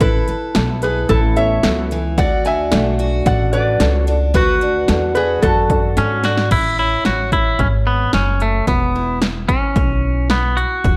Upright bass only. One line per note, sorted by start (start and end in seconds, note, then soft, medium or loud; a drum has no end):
0.01 0.26 A1 medium
0.28 muted upright bass stroke soft
0.55 1.08 B1 medium
1.09 1.62 A1 medium
1.64 2.16 C#2 medium
2.18 2.70 D2 medium
2.72 3.25 B1 medium
3.26 3.79 A1 medium
3.80 4.33 C#2 medium
4.35 4.87 D2 medium
4.89 5.41 E2 medium
5.43 5.96 F#2 medium
5.97 6.50 G#2 medium
6.51 6.94 A1 medium
7.06 7.52 A1 medium
7.59 8.06 G#1 medium
8.13 8.60 F#1 medium
8.67 9.53 E1 medium
9.76 10.62 B1 medium
10.84 10.97 E1 medium